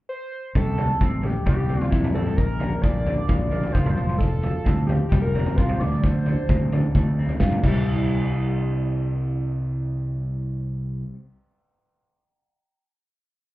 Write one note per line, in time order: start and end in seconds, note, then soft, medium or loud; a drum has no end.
0.09 0.52 C5 loud
0.55 0.90 C2 loud
0.55 0.77 C3 medium
0.55 1.26 A4 loud
0.55 kick medium
0.55 floor tom medium
0.78 1.21 C3 medium
0.78 floor tom medium
1.01 1.35 A1 medium
1.01 1.68 C4 medium
1.01 kick loud
1.01 mid tom medium
1.22 2.38 C3 medium
1.22 1.47 G4 medium
1.22 floor tom medium
1.45 1.81 C2 medium
1.45 2.38 G3 medium
1.45 1.90 G4 medium
1.45 kick loud
1.45 floor tom medium
1.45 mid tom medium
1.69 2.13 C4 medium
1.69 floor tom medium
1.81 floor tom medium
1.91 2.27 F2 medium
1.91 2.37 E4 medium
1.91 kick loud
2.04 floor tom medium
2.04 mid tom medium
2.14 2.38 C4 medium
2.14 2.38 A4 medium
2.14 floor tom medium
2.26 mid tom medium
2.36 2.73 A#1 medium
2.36 3.52 A#2 medium
2.36 2.83 A#4 loud
2.36 kick medium
2.36 floor tom medium
2.59 3.04 D3 medium
2.59 floor tom medium
2.82 3.18 A#1 medium
2.82 3.50 A#3 medium
2.82 3.74 D5 loud
2.82 kick loud
2.82 mid tom medium
3.05 3.96 D3 medium
3.05 floor tom medium
3.28 3.64 A#1 loud
3.28 3.96 F3 medium
3.28 kick loud
3.28 floor tom medium
3.28 mid tom medium
3.51 3.97 A#3 medium
3.51 floor tom medium
3.63 floor tom medium
3.72 3.92 F#1 medium
3.72 5.15 F4 medium
3.72 4.18 C5 loud
3.72 kick loud
3.86 floor tom medium
3.86 mid tom medium
3.96 4.49 F1 medium
3.96 4.18 F3 medium
3.96 floor tom medium
4.09 mid tom medium
4.18 4.41 F3 medium
4.18 4.88 A4 loud
4.18 kick loud
4.18 floor tom medium
4.42 4.86 F3 medium
4.42 floor tom medium
4.65 5.01 D2 medium
4.65 5.34 C4 medium
4.65 kick loud
4.65 mid tom medium
4.87 5.79 F3 medium
4.87 5.08 G4 medium
4.87 floor tom medium
5.09 5.46 F1 loud
5.09 5.80 G3 medium
5.09 5.21 G4 medium
5.09 kick loud
5.09 floor tom medium
5.09 mid tom medium
5.22 5.58 A#4 loud
5.35 5.84 C4 medium
5.35 floor tom medium
5.46 floor tom medium
5.56 5.75 C2 medium
5.56 5.81 F4 medium
5.56 5.81 C5 medium
5.56 kick loud
5.69 floor tom medium
5.69 mid tom medium
5.79 6.32 D2 medium
5.79 6.03 D3 medium
5.79 6.05 D5 medium
5.79 floor tom medium
5.92 mid tom medium
6.03 6.26 D3 medium
6.03 6.95 C5 loud
6.03 kick medium
6.03 floor tom medium
6.26 6.72 D3 medium
6.26 floor tom medium
6.49 6.83 D2 medium
6.49 7.18 C4 medium
6.49 kick loud
6.49 mid tom medium
6.72 7.63 D3 medium
6.72 floor tom medium
6.95 7.29 D2 loud
6.95 7.64 A3 medium
6.95 kick medium
6.95 floor tom medium
7.19 7.64 C4 medium
7.29 floor tom medium
7.40 7.58 G2 medium
7.40 7.63 F4 medium
7.40 kick loud
7.40 snare medium
7.52 floor tom medium
7.52 mid tom medium
7.62 11.03 C2 medium
7.62 11.12 C3 medium
7.62 11.14 E3 medium
7.62 11.15 G3 medium
7.62 11.15 C4 medium
7.62 kick loud
7.62 crash medium
7.66 11.16 E4 loud